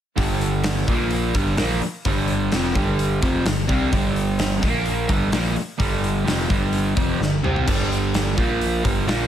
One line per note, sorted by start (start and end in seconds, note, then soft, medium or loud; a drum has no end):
0.16 0.84 G1 medium
0.16 0.86 G2 medium
0.16 0.87 D3 medium
0.16 0.87 G3 medium
0.16 kick medium
0.16 open hi-hat medium
0.41 open hi-hat medium
0.64 snare loud
0.64 open hi-hat medium
0.88 1.31 A#1 medium
0.88 1.34 A#2 medium
0.88 1.34 F3 medium
0.88 1.35 A#3 loud
0.88 kick medium
0.88 open hi-hat medium
1.11 open hi-hat medium
1.34 1.56 G1 loud
1.34 1.57 G2 medium
1.34 1.57 D3 medium
1.34 1.58 G3 medium
1.34 kick loud
1.34 open hi-hat medium
1.58 1.80 A#1 medium
1.58 1.80 A#2 medium
1.58 1.81 F3 loud
1.58 1.81 A#3 loud
1.58 snare loud
1.58 open hi-hat medium
1.81 muted picked electric bass stroke soft
1.81 muted overdriven electric guitar stroke medium
1.81 open hi-hat medium
2.05 2.48 G1 loud
2.05 2.51 G2 medium
2.05 2.51 D3 loud
2.05 2.52 G3 loud
2.05 kick medium
2.05 open hi-hat medium
2.28 open hi-hat medium
2.52 2.74 F1 loud
2.52 2.75 F2 medium
2.52 2.75 C3 medium
2.52 2.75 F3 loud
2.52 snare loud
2.52 open hi-hat medium
2.75 3.18 G1 medium
2.75 3.21 G2 medium
2.75 3.21 D3 medium
2.75 3.22 G3 loud
2.75 kick medium
2.75 open hi-hat soft
2.99 open hi-hat medium
3.22 3.44 F1 medium
3.22 3.44 F2 medium
3.22 3.45 C3 medium
3.22 3.45 F3 loud
3.22 kick loud
3.22 open hi-hat medium
3.45 3.67 G1 medium
3.45 3.64 G2 medium
3.45 3.64 D3 medium
3.45 snare loud
3.45 open hi-hat medium
3.67 3.91 C2 loud
3.67 3.91 C3 medium
3.67 3.91 G3 loud
3.67 3.91 C4 loud
3.67 kick loud
3.67 open hi-hat soft
3.92 4.58 G1 loud
3.92 4.61 G2 medium
3.92 4.62 D3 loud
3.92 4.63 G3 loud
3.92 kick loud
3.92 open hi-hat medium
4.16 open hi-hat medium
4.39 snare loud
4.39 open hi-hat medium
4.62 5.06 A#1 medium
4.62 5.08 A#2 medium
4.62 5.08 F3 medium
4.62 5.09 A#3 loud
4.62 kick loud
4.62 open hi-hat medium
4.86 open hi-hat medium
5.08 5.31 G1 loud
5.08 5.31 G2 medium
5.08 5.32 D3 medium
5.08 5.32 G3 medium
5.08 kick loud
5.08 open hi-hat medium
5.32 5.54 A#1 medium
5.32 5.55 A#2 medium
5.32 5.55 F3 medium
5.32 5.56 A#3 loud
5.32 snare loud
5.32 open hi-hat medium
5.55 muted overdriven electric guitar stroke medium
5.55 muted picked electric bass stroke soft
5.55 open hi-hat medium
5.79 6.23 G1 loud
5.79 6.24 G2 medium
5.79 6.25 D3 loud
5.79 6.26 G3 loud
5.79 kick loud
5.79 open hi-hat medium
6.04 open hi-hat medium
6.25 6.48 F1 medium
6.25 6.48 F2 medium
6.25 6.49 C3 medium
6.25 6.49 F3 loud
6.25 snare loud
6.25 open hi-hat medium
6.49 6.93 G1 medium
6.49 6.95 G2 medium
6.49 6.95 D3 medium
6.49 6.96 G3 medium
6.49 kick medium
6.49 open hi-hat soft
6.73 open hi-hat medium
6.95 7.18 F1 medium
6.95 7.18 F2 medium
6.95 7.19 C3 medium
6.95 7.19 F3 medium
6.95 kick loud
6.95 open hi-hat medium
7.19 7.41 G1 medium
7.19 7.39 G2 medium
7.19 7.39 D3 medium
7.19 snare medium
7.43 7.65 C2 medium
7.43 7.66 C3 medium
7.43 7.66 G3 medium
7.43 7.67 C4 medium
7.43 mid tom medium
7.56 floor tom medium
7.67 8.34 G1 medium
7.67 8.36 G2 medium
7.67 8.37 D3 medium
7.67 8.37 G3 medium
7.67 kick loud
7.67 open hi-hat medium
7.67 crash medium
7.92 open hi-hat medium
8.14 snare loud
8.14 open hi-hat medium
8.37 8.81 A#1 medium
8.37 8.83 A#2 medium
8.37 8.84 F3 medium
8.37 8.84 A#3 medium
8.37 kick medium
8.37 open hi-hat medium
8.61 open hi-hat medium
8.84 9.06 G1 medium
8.84 9.07 G2 medium
8.84 9.07 D3 loud
8.84 9.07 G3 medium
8.84 kick loud
8.84 open hi-hat medium
9.07 9.27 A#1 medium
9.07 9.27 A#2 medium
9.07 9.27 F3 medium
9.07 9.27 A#3 loud
9.07 snare loud
9.07 open hi-hat medium